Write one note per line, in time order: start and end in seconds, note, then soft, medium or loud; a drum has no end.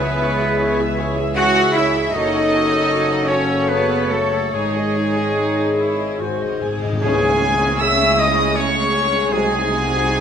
0.00 2.10 C#2 medium
0.00 0.95 C#3 medium
0.00 2.17 C#3 medium
0.00 2.10 E3 medium
0.00 2.10 G#3 medium
0.00 1.74 G#3 medium
0.00 0.98 B3 loud
0.00 0.40 G#4 medium
0.00 2.10 G#4 medium
0.00 2.11 G#4 medium
0.00 0.23 G#4 medium
0.00 0.97 B4 loud
0.00 0.98 B4 medium
0.00 4.36 C#5 medium
0.00 1.83 E5 medium
0.00 0.23 E5 medium
0.00 0.97 G#5 medium
0.05 0.23 E5 medium
0.22 0.58 E4 medium
0.22 0.42 E4 medium
0.22 0.42 C#5 medium
0.22 0.43 G#5 medium
0.41 1.36 G#4 medium
0.41 0.60 G#4 medium
0.41 0.61 E5 medium
0.60 1.55 E4 medium
0.60 0.78 E4 medium
0.60 0.79 C#5 medium
0.60 0.79 G#5 medium
0.79 0.99 G#4 medium
0.79 1.16 E5 medium
0.79 0.99 E5 medium
0.98 1.18 E4 medium
0.98 1.18 C#5 medium
0.98 2.17 G#5 medium
0.98 1.18 G#5 medium
1.17 1.37 G#4 medium
1.17 2.17 E5 medium
1.17 1.37 E5 medium
1.36 1.56 E4 medium
1.36 1.73 F#4 loud
1.36 2.17 G#4 medium
1.36 1.56 C#5 medium
1.36 1.73 F#5 loud
1.36 1.78 F#5 loud
1.36 1.55 G#5 medium
1.56 2.17 E4 medium
1.56 1.77 G#4 medium
1.56 1.76 E5 medium
1.56 1.77 E5 medium
1.75 2.17 G#3 medium
1.75 2.15 E4 loud
1.75 1.96 E4 medium
1.75 1.96 C#5 medium
1.75 2.14 E5 medium
1.75 2.16 E5 medium
1.75 1.96 G#5 medium
1.95 2.50 C#4 medium
1.95 2.15 G#4 medium
1.95 2.14 E5 medium
1.95 2.15 E5 medium
2.13 4.49 F#1 medium
2.13 4.56 F#2 medium
2.13 4.49 C#3 medium
2.13 4.49 F#3 medium
2.13 3.26 D#4 loud
2.13 2.33 F#4 medium
2.13 4.36 A4 medium
2.13 4.19 A4 medium
2.13 6.15 C#5 medium
2.13 2.33 C#5 medium
2.13 3.28 D#5 loud
2.13 3.30 D#5 loud
2.13 2.31 A5 medium
2.33 4.31 A3 medium
2.33 2.53 A4 medium
2.33 2.52 F#5 medium
2.52 4.10 C#4 medium
2.52 2.71 F#4 medium
2.52 2.71 C#5 medium
2.52 2.70 A5 medium
2.70 3.90 F#4 medium
2.70 2.90 A4 medium
2.70 2.89 F#5 medium
2.89 3.08 F#4 medium
2.89 3.68 A4 medium
2.89 3.08 C#5 medium
2.89 3.07 A5 medium
3.09 3.29 A4 medium
3.09 3.48 C#5 medium
3.09 3.29 F#5 medium
3.28 3.69 C#4 medium
3.28 3.49 F#4 medium
3.28 3.68 C#5 medium
3.28 3.70 C#5 medium
3.28 3.49 C#5 medium
3.28 4.56 F#5 medium
3.28 3.49 A5 medium
3.48 3.69 A4 medium
3.48 3.69 F#5 medium
3.69 4.11 B3 loud
3.69 3.89 F#4 medium
3.69 4.56 A4 medium
3.69 4.13 B4 medium
3.69 4.11 B4 medium
3.69 3.89 C#5 medium
3.69 3.88 A5 medium
3.89 4.57 F#4 medium
3.89 4.11 A4 medium
3.89 4.10 F#5 medium
4.09 4.53 A3 medium
4.09 4.94 C#4 medium
4.09 4.32 F#4 medium
4.09 4.53 A4 medium
4.09 4.32 C#5 medium
4.09 4.31 A5 medium
4.31 4.56 A3 medium
4.31 4.53 A4 medium
4.31 4.52 F#5 soft
4.52 6.81 G#1 medium
4.52 6.18 G#2 medium
4.52 6.65 D#3 medium
4.52 6.19 G#3 medium
4.52 6.65 G#3 medium
4.52 4.73 D#4 medium
4.52 6.64 G#4 medium
4.52 6.19 G#4 medium
4.52 6.64 G#4 medium
4.52 6.16 G#4 medium
4.52 4.72 C#5 medium
4.52 6.16 C#5 medium
4.52 4.73 C#5 medium
4.73 6.39 G#3 medium
4.73 4.95 G#4 medium
4.73 4.95 D#5 medium
4.94 6.22 C#4 medium
4.94 5.16 D#4 medium
4.94 5.15 C#5 medium
4.94 5.16 C#5 medium
5.16 5.36 G#4 medium
5.16 5.36 D#5 medium
5.35 5.74 D#4 medium
5.35 7.28 G#4 medium
5.35 5.55 C#5 medium
5.56 5.97 C#5 medium
5.56 5.77 D#5 medium
5.77 6.18 E4 medium
5.77 5.98 C#5 medium
5.77 7.06 D#5 medium
5.98 6.22 C#5 medium
5.98 6.19 D#5 medium
6.19 6.27 G#2 soft
6.19 7.06 G#2 medium
6.19 6.62 F#4 medium
6.19 6.68 C5 medium
6.19 6.39 G#5 medium
6.28 6.35 G#2 soft
6.36 6.43 G#2 soft
6.36 6.61 D#5 medium
6.41 6.51 G#2 medium
6.41 7.54 G#3 soft
6.52 6.60 G#2 medium
6.61 6.67 G#2 medium
6.61 7.06 C4 soft
6.61 7.02 G#4 medium
6.61 6.82 G#5 medium
6.69 6.76 G#2 medium
6.77 6.84 G#2 medium
6.83 6.91 G#2 medium
6.83 7.06 D#4 medium
6.83 7.03 D#5 medium
6.92 7.00 G#2 loud
7.02 9.28 C#2 medium
7.02 8.15 C#3 loud
7.02 9.28 C#3 medium
7.02 9.35 C#3 medium
7.02 7.32 E3 medium
7.02 10.20 G#3 medium
7.02 7.32 G#3 medium
7.02 7.31 C#4 medium
7.02 9.28 C#4 medium
7.02 9.28 E4 medium
7.02 7.31 G#4 medium
7.02 10.20 G#4 medium
7.02 7.83 G#4 medium
7.02 7.82 G#4 loud
7.02 7.77 G#5 loud
7.02 tam-tam medium
7.30 7.80 G#4 medium
7.55 9.06 G#3 medium
7.81 8.30 G#4 medium
7.81 8.20 E5 loud
7.81 8.22 E5 loud
7.81 8.19 E6 loud
8.07 9.35 E4 medium
8.19 8.58 D#5 loud
8.19 8.59 D#5 loud
8.19 8.57 D#6 medium
8.32 8.81 G#4 medium
8.56 9.00 A4 medium
8.56 9.34 C#5 loud
8.56 9.31 C#5 medium
8.56 9.32 C#6 loud
8.83 10.20 G#4 medium
9.07 10.20 G#3 medium
9.31 10.20 C2 medium
9.31 10.20 C3 medium
9.31 9.58 F#3 medium
9.31 9.58 G#3 medium
9.31 9.58 C4 medium
9.31 10.20 D#4 medium
9.31 10.20 F#4 medium
9.31 10.20 G#4 medium
9.31 9.58 G#4 medium
9.31 10.20 G#4 loud
9.31 10.20 G#5 loud
9.56 10.05 F#4 medium
9.81 10.20 F#3 medium
10.06 10.20 F#4 medium